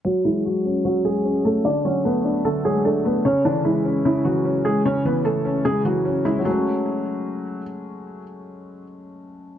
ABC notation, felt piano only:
X:1
M:4/4
L:1/8
Q:1/4=150
K:F#m
V:1 name="Felt piano"
[F,F] [E,E] [F,F]2 [F,F] [G,G]2 [A,A] | [Dd] [Cc] [B,B]2 [A,A] [G,G] [A,A] [B,B] | [Cc] [D,D] [E,E]2 [E,E] [F,F]2 [G,G] | [Cc] [B,B] [A,A]2 [G,G] [F,F]2 [E,E] |
F,6 z2 | z8 |]